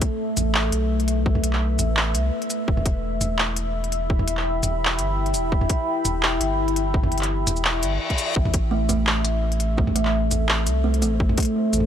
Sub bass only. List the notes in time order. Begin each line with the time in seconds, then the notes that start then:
0.37 A1
0.72 B1
1.79 A1
2.14 C2
2.68 E1
3.21 E1
4.63 E1
4.98 G1
5.34 E1
6.05 E1
6.40 G1
7.47 E1
7.83 G1
8.36 A1
8.89 A1
10.31 A1
10.67 C2
11.02 A1
11.73 A1